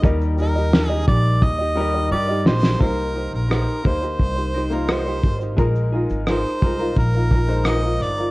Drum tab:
SH |xxxxxxxx--------|xx-xxx-xxx-xxxxx|xx-xxx-xxx-xxxxx|
SD |----o---------oo|----r-------r---|----r-------r-r-|
BD |o-----o-o-------|o-----o-o-----o-|o-----o-o-o-----|